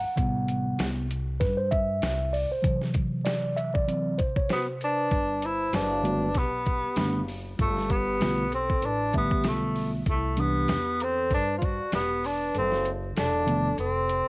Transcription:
Already playing: F#5
0.04 muted upright bass stroke
0.16 A1 C3 G3 B3, kick, closed hi-hat
0.48 closed hi-hat
0.78 C2, snare, closed hi-hat
1.11 closed hi-hat
1.40 G2 B4, kick, snare, closed hi-hat
1.57 C5
1.71 E5, kick, closed hi-hat
2.02 C2, snare, closed hi-hat
2.33 D5, open hi-hat
2.50 C5, muted upright bass stroke
2.62 C3 E3 F#3, kick, closed hi-hat
2.82 snare
2.94 kick, closed hi-hat
3.25 D5, snare, closed hi-hat
3.57 E5, closed hi-hat
3.74 D5, kick
3.87 E3 F#3 C4, closed hi-hat
4.18 C5, kick, closed hi-hat
4.36 C#5, kick
4.49 B3 F#4 C5, snare, closed hi-hat
4.81 D4 B4, closed hi-hat
5.11 G1, kick, closed hi-hat
5.42 E4 C5, closed hi-hat
5.73 F#1 D4 B4, snare, closed hi-hat
6.03 D3 G3 A3 B3 F#4, closed hi-hat
6.35 B1 B3 G4, kick, snare, closed hi-hat
6.66 kick, closed hi-hat
6.83 muted upright bass stroke
6.96 F#1 D3 G3 A3 B3 D4, snare, closed hi-hat
7.28 open hi-hat
7.57 G1 A3 F4, kick, closed hi-hat
7.77 snare
7.89 B3 G4, kick, closed hi-hat
8.20 B1 D3 G3 A3 B3 F4, snare, closed hi-hat
8.51 C4 A4, closed hi-hat
8.70 kick
8.82 A1 D4 B4, closed hi-hat
9.13 D3 G3 A3 B3 G4 E5, kick, closed hi-hat
9.17 B3
9.31 muted upright bass stroke, kick
9.44 B1 A3 F4, snare, closed hi-hat
9.76 open hi-hat
10.06 C2 A3 E4, kick, closed hi-hat
10.37 C3 E3 G3 B3 D4 G4, closed hi-hat
10.68 E2, snare, closed hi-hat
11.00 C4 A4, closed hi-hat
11.29 G2 B4, kick, snare, closed hi-hat
11.34 D4
11.54 F4 C5
11.61 F#4 D5, kick, closed hi-hat
11.79 muted upright bass stroke
11.91 E1 B3 G4, snare, closed hi-hat
12.23 D4 B4, open hi-hat
12.54 F#1 C4 A4, closed hi-hat
12.72 snare
12.85 closed hi-hat
13.16 E1 D4 A4, snare, closed hi-hat
13.46 C3 D#3 F3 A3 B3, closed hi-hat
13.78 F1 C4 A4, closed hi-hat
14.09 closed hi-hat

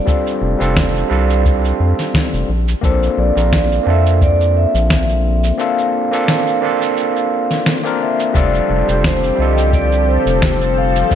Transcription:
Already playing: G3 C4 D4 F4 A4 D5
0.05 G3 C4 D4 F4 A4, kick, cabasa
0.27 cabasa
0.42 F1
0.59 F1 G3 C4 D4 F4 A4, cabasa
0.76 kick, snare, cabasa
0.96 cabasa
1.09 C2 G3 C4 D4 F4 A4
1.30 cabasa
1.45 kick, cabasa
1.65 cabasa
1.80 F2
1.99 snare, cabasa
2.14 kick, snare, cabasa
2.33 F1, cabasa
2.49 A#1
2.68 cabasa
2.81 A#1 A#3 C4 D4 F4 A4 C5, kick, cabasa
3.03 cabasa
3.18 A#1 D5
3.35 A#1 A#3 C4 D4 F4 A#4, cabasa
3.52 kick, snare, cabasa
3.72 cabasa
3.83 F2 A#3 C4 D4
3.88 F4 A4 E5
4.06 cabasa
4.21 D5, kick, cabasa
4.41 cabasa
4.57 E5
4.74 A#1, cabasa
4.90 kick, snare, cabasa
5.09 cabasa
5.44 cabasa
5.57 A#3 C4 D4 F4 A4 F5, cabasa
5.78 cabasa
6.11 A#3 C4 D4 F4 A4, cabasa
6.28 snare, cabasa
6.47 cabasa
6.61 A#3 C4 D4 F4 A4
6.82 cabasa
6.97 cabasa
7.16 cabasa
7.51 snare, cabasa
7.66 snare, cabasa
7.83 A#3 C4 D4 F4 A#4, cabasa
8.02 E5
8.20 cabasa
8.33 F1 F3 G3 C4 D4 F4 G4 A4 D5, kick, cabasa
8.54 cabasa
8.70 F1
8.87 F1 G3 C4 D4 F4 C5, cabasa
9.04 C5, kick, snare, cabasa
9.23 cabasa
9.35 C2 D3 G3 C4
9.40 F4 A4 D#5
9.58 cabasa
9.73 D5, kick, cabasa
9.92 cabasa
10.09 C5
10.26 F1, cabasa
10.42 kick, snare, cabasa
10.61 cabasa
10.78 F5
10.96 cabasa
11.09 G3 C4 D4 F4, kick, cabasa

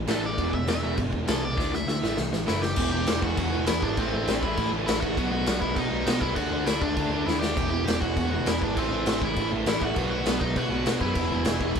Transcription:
0.07 A1 A2 E3 A3 A4, snare, crash
0.24 A2 E3 D5
0.38 E1 E2 B2 E3, kick, crash
0.53 E1 E2 B2 E5, kick
0.67 E1 E2 B2 E5, snare, crash
0.82 E1 E2 B2 E3
0.97 G1 E2 B2, kick, crash
1.12 E1 E2 B2, kick
1.26 C2 E2 B2 E3 A4, snare, crash
1.42 E2 B2 D5
1.57 D2 D3 A3 D4, kick, snare
1.73 D2 D3 A3 E5, snare
1.87 D2 D3 A3 E5, snare
2.02 A1 A2 E3 A3, snare
2.17 C2 A2 E3, snare
2.33 A1 A2 E3, snare
2.46 F#1 A2 E3 A3 E4, snare
2.62 A2 E3 G4, snare
2.76 E1 E2 B2 E3, kick, crash
2.92 E2 B2 E3 G4
3.07 E1 E2 B2 E3, snare, crash
3.22 E1 E2 B2 E3 F#4, kick
3.36 E2 B2 E3, kick, crash
3.51 E1 E2 B2 E3
3.66 E2 B2 E3 E4, snare, crash
3.82 G#1 E2 B2 E3 D4, kick
3.97 A1 A2 E3 A3 C4, kick, crash
4.13 A1 A2 E3 A3
4.28 A1 A2 E3 A3, snare, crash
4.41 A1 A2 E3 A3 E4, kick
4.57 A1 A2 E3 A3, kick, crash
4.72 A1 A2 E3 A3
4.86 A1 A2 E3 A3 E4, snare, crash
5.01 A2 E3 A3 F#4, kick
5.16 B1 B2 F#3 B3, kick, crash
5.30 B2 F#3 B3 F#4
5.46 B1 B2 F#3 B3, snare, crash
5.60 B1 B2 F#3 B3 E4, kick
5.75 B2 F#3 B3 D#4, kick, crash
5.90 B1 B2 F#3 B3
6.06 B2 F#3 B3 D#4, snare, crash
6.20 C2 B2 F#3 B3 E4, kick
6.34 D2 D3 A3 D4 F#4, kick, crash
6.50 D2 D3 A3 D4
6.65 D2 D3 A3 D4 E4, snare, crash
6.81 D2 D3 A3 D4, kick
6.96 D2 D3 A3 D4, kick, crash
7.10 D2 D3 A3 D4
7.26 D#2 D3 A3 D4 E4, snare
7.40 D3 A3 D4 G4, snare
7.57 E1 E2 B2 E3, kick, crash
7.70 E2 B2 E3 G4
7.85 E1 E2 B2 E3 G4, snare, crash
8.00 E1 E2 B2 E3 F#4, kick
8.15 E2 B2 E3, kick, crash
8.31 E1 E2 B2 E3 F#4
8.46 E2 B2 E3 E4, snare, crash
8.61 G#1 E2 B2 E3 D4, kick
8.76 A1 A2 E3 A3 C4, kick, crash
8.90 A1 A2 E3 A3
9.06 A1 A2 E3 A3, snare, crash
9.22 A1 A2 E3 A3 E4, kick
9.36 A1 A2 E3 A3, kick, crash
9.52 A1 A2 E3 A3
9.66 A1 A2 E3 A3 E4, snare, crash
9.81 A2 E3 A3 F#4, kick
9.96 B1 B2 F#3 B3, kick, crash
10.10 B2 F#3 B3 F#4
10.26 B1 B2 F#3 B3, snare, crash
10.40 B1 B2 F#3 B3 D#4, kick
10.55 B2 F#3 B3 F#4, kick, crash
10.70 B1 B2 F#3 B3
10.85 B2 F#3 B3, snare, crash
11.01 F#2 B2 F#3 B3 E4, kick
11.15 E1 E2 B2 E3, kick, crash
11.32 E1 E2 B2 E3
11.45 E1 E2 B2 E3, snare, crash
11.61 E1 E2 B2 E3, kick
11.75 E1 E2, kick, crash

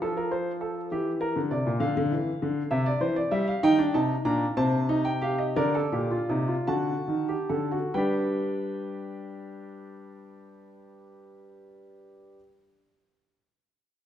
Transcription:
0.02 F3 A4
0.17 A#4
0.31 C5
0.61 A4
0.91 E3 G4
1.21 A#4
1.36 D3
1.51 C3 D5
1.66 A#2
1.80 D3 F5
1.97 D3
2.11 E3
2.42 D3
2.71 C3 E5
2.86 D5
3.01 E3 C5
3.16 D5
3.31 G3 E5
3.48 F5
3.63 D#3 D#4 G5
3.79 D4
3.94 C3 D#4 A5
4.25 A#2 D4 A#5
4.57 C3 C4 A5
4.89 D#4
5.05 G5
5.22 G4 F5
5.38 D#5
5.56 D3 A#4 D5
5.75 A4
5.92 A#2 G4
6.11 F4
6.29 C3 D#4
6.48 F4
6.67 D3 F#4 A5
7.08 D#3
7.28 G4
7.49 D3 A4
7.71 F#4
7.94 G3 D4 G4 B4 G5

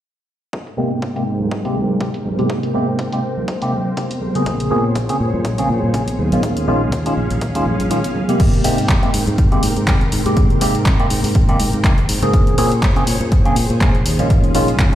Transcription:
0.53 G#2 A#4 C5 G5, kick, closed hi-hat
0.67 closed hi-hat
0.77 C3 G#3 A#3 G4, high conga, maracas
0.91 maracas
1.02 kick, closed hi-hat, maracas
1.16 C3 G#3 A#3 G4, closed hi-hat
1.26 maracas
1.40 low conga, maracas
1.51 kick, closed hi-hat, maracas
1.65 C3 G#3 A#3 G4, closed hi-hat, maracas
1.76 low conga, maracas
1.90 maracas
2.00 C3 G#3 A#3 G4, kick, closed hi-hat, maracas
2.14 closed hi-hat, high conga, maracas
2.25 low conga, maracas
2.39 C3 G#3 A#3 G4, closed hi-hat, high conga, maracas
2.50 kick, closed hi-hat, maracas
2.63 closed hi-hat, maracas
2.74 C3 G#3 A#3 G4, high conga, maracas
2.88 maracas
2.99 kick, closed hi-hat, maracas
3.12 C3 G#3 A#3 G4, closed hi-hat, maracas
3.24 maracas
3.37 low conga, maracas
3.48 kick, closed hi-hat, maracas
3.62 C3 G#3 A#3 G4, closed hi-hat, maracas
3.73 low conga, maracas
3.86 maracas
3.97 C3 G#3 A#3 G4, kick, closed hi-hat
4.10 closed hi-hat, high conga, maracas
4.21 low conga, maracas
4.35 C#3 A#3 C4 G#4, closed hi-hat, high conga, maracas
4.46 A#1 G#4 C#5, kick, closed hi-hat
4.60 closed hi-hat, maracas
4.71 A#2 C#3 A#3 C4 G#4, high conga, maracas
4.84 maracas
4.95 A#1, kick, closed hi-hat, maracas
5.09 C#3 A#3 C4 G#4, closed hi-hat, maracas
5.20 A#2, maracas
5.33 A#2, low conga, maracas
5.45 A#1, kick, closed hi-hat, maracas
5.58 C#3 A#3 C4 G#4, closed hi-hat, maracas
5.69 A#2, low conga, maracas
5.83 A#2, maracas
5.94 A#1 C#3 A#3 C4 G#4, kick, closed hi-hat, maracas
6.08 closed hi-hat, high conga, maracas
6.18 D#2 C#4 F5, low conga, maracas
6.32 A#1 D#3 G#3 C#4 F4, closed hi-hat, high conga, maracas
6.43 D#2, kick, closed hi-hat, maracas
6.56 closed hi-hat, maracas
6.67 A#1 D#3 G#3 C#4 F4, high conga, maracas
6.82 maracas
6.92 D#2, kick, closed hi-hat
7.05 D#3 G#3 C#4 F4, closed hi-hat, maracas
7.16 A#1, maracas
7.30 A#1, closed hi-hat, low conga, maracas
7.41 D#2, kick, closed hi-hat, maracas
7.55 D#3 G#3 C#4 F4, closed hi-hat
7.65 A#1, low conga, maracas
7.80 A#1, closed hi-hat, maracas
7.90 D#3 G#3 C#4 F4, closed hi-hat, maracas
8.04 closed hi-hat, high conga, maracas
8.15 low conga, maracas
8.29 C3 G#3 A#3 G4, closed hi-hat, high conga, maracas
8.40 G#1 C4 A#4 G5, kick, closed hi-hat, crash
8.54 closed hi-hat
8.64 G#2 C3 G#3 A#3 G4, open hi-hat
8.78 closed hi-hat
8.89 G#1, kick, clap, closed hi-hat
9.02 C3 G#3 A#3 G4, closed hi-hat
9.14 G#2, open hi-hat
9.27 G#2, closed hi-hat
9.38 G#1, kick, closed hi-hat
9.52 C3 G#3 A#3 G4, closed hi-hat
9.63 G#2, open hi-hat
9.76 G#2, closed hi-hat
9.87 G#1 C3 G#3 A#3 G4, kick, clap, closed hi-hat
10.01 closed hi-hat
10.12 G#2, open hi-hat
10.25 G#2 C3 G#3 A#3 G4, closed hi-hat
10.37 G#1, kick, closed hi-hat
10.50 closed hi-hat
10.61 G#2 C3 G#3 A#3 G4, open hi-hat
10.75 closed hi-hat
10.86 G#1, kick, clap, closed hi-hat
10.99 C3 G#3 A#3 G4, closed hi-hat
11.10 G#2, open hi-hat
11.24 G#2, open hi-hat
11.35 G#1, kick, closed hi-hat
11.48 C3 G#3 A#3 G4, closed hi-hat
11.60 G#2, open hi-hat
11.73 G#2, closed hi-hat
11.84 G#1 C3 G#3 A#3 G4, kick, clap, closed hi-hat
11.98 closed hi-hat
12.09 G#2, open hi-hat
12.22 G#2 C#3 A#3 C4 G#4, closed hi-hat
12.33 A#1 G#4 C5 C#5, kick, closed hi-hat
12.47 closed hi-hat
12.57 A#2 C#3 A#3 C4 G#4, open hi-hat
12.72 closed hi-hat
12.83 A#1, kick, clap, closed hi-hat
12.96 C#3 A#3 C4 G#4, closed hi-hat
13.07 A#2, open hi-hat
13.21 A#2, closed hi-hat
13.32 A#1, kick, closed hi-hat
13.45 C#3 A#3 C4 G#4, closed hi-hat
13.56 A#2, open hi-hat
13.70 A#2, closed hi-hat
13.81 A#1 C#3 A#3 C4 G#4, kick, clap, closed hi-hat
13.95 closed hi-hat
14.05 D#2 C#4 F5, open hi-hat
14.19 A#1 D#3 G#3 C#4 F4, closed hi-hat
14.30 D#2, kick, closed hi-hat
14.44 closed hi-hat
14.55 A#1 D#3 G#3 C#4 F4, open hi-hat
14.68 closed hi-hat
14.79 D#2, kick, clap, closed hi-hat

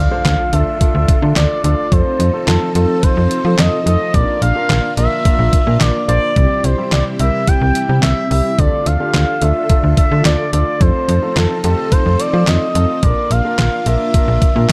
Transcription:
Already playing: D3 D4 F4 A4 F5, impact
0.11 A3 D4 F4 C5
0.25 D2, snare, clap, closed hi-hat
0.53 D2 A3 D4 F4 A4 E5, closed hi-hat
0.81 A3 D4 F4 A4, kick, closed hi-hat
0.95 D2
1.08 kick, closed hi-hat
1.22 D3 A3 D4 F4 A4
1.36 D2 D5, snare, clap, closed hi-hat
1.64 D2 A3 D4 F4 A4 D5, closed hi-hat
1.92 F2 F3 A3 C4 D#4 F4 A4 C5, kick, closed hi-hat
2.20 F2, closed hi-hat
2.33 A3 C4 F4 A4
2.47 F2 A4, snare, clap, closed hi-hat
2.75 F2 A3 C4 F4 A4, closed hi-hat
3.03 A3 C4 F4 A4 C5, kick, closed hi-hat
3.17 F2
3.31 closed hi-hat
3.44 F3 A3 C4 F4 A4
3.58 F2 D#5, snare, clap, closed hi-hat
3.86 F2 A3 C4 F4 A4 D#5, closed hi-hat
4.14 A#1 A#3 D4 F4 A#4 D5, kick, closed hi-hat
4.42 A#1 F5, closed hi-hat
4.55 A#3 D4 F4 A#4
4.70 A#1, snare, clap, closed hi-hat
4.97 A#1 A#3 D4 F4 A#4 E5, closed hi-hat
5.25 A#3 D4 F4 A#4, kick, closed hi-hat
5.39 A#1
5.53 kick, closed hi-hat
5.67 A#2 A#3 D4 F4 A#4
5.81 A#1 D5, snare, clap, closed hi-hat
6.08 A#1 A#3 D4 F4 C5 D5, closed hi-hat
6.36 C2 C3 G3 C4 E4 G4, kick, closed hi-hat
6.64 C2 C5, closed hi-hat
6.78 G3 C4 E4 G4
6.92 C2 D5, snare, clap, closed hi-hat
7.19 C2 G3 C4 E4 A#4 E5, closed hi-hat
7.47 G3 C4 E4 G4 G5, kick, closed hi-hat
7.61 C2
7.75 closed hi-hat
7.89 C3 G3 C4 E4 G4
8.03 C2 E5, snare, clap, closed hi-hat
8.30 C2 G3 C4 E4 G4 E5, open hi-hat
8.58 D2 D3 A3 D4 F4 A4 D5, kick, closed hi-hat
8.86 D2 F5, closed hi-hat
9.00 A3 D4 F4 G4
9.14 D2, snare, clap, closed hi-hat
9.42 D2 A3 D4 F4 A4 E5, closed hi-hat
9.69 A3 D4 F4 A4, kick, closed hi-hat
9.84 D2
9.97 E5, kick, closed hi-hat
10.11 D3 A3 D4 F4 A4
10.25 D2 D5, snare, clap, closed hi-hat
10.53 D2 A3 D4 F4 A4 D5, closed hi-hat
10.80 F2 F3 A3 C4 D#4 F4 A4 C5, kick, closed hi-hat
11.08 F2, closed hi-hat
11.22 A3 C4 F4 A4
11.36 F2 A4, snare, clap, closed hi-hat
11.64 F2 A3 C4 F4 G4 A4, closed hi-hat
11.92 A3 C4 F4 A4 C5, kick, closed hi-hat
12.06 F2
12.20 D5, closed hi-hat
12.33 F3 A3 C4 F4 C5
12.47 F2 D#5, snare, clap, closed hi-hat
12.75 F2 A3 C4 F4 A4, closed hi-hat
13.03 A#1 A#3 D4 F4 A#4 D5, kick, closed hi-hat
13.31 A#1 F5, closed hi-hat
13.45 A#3 D4 F4 A#4
13.59 A#1, snare, clap, closed hi-hat
13.86 A#1 A#3 D4 F4 A#4 E5, closed hi-hat
14.14 A#3 D4 F4 A#4, kick, closed hi-hat
14.28 A#1
14.42 kick, closed hi-hat
14.56 A#2 A#3 D4 F4 A#4

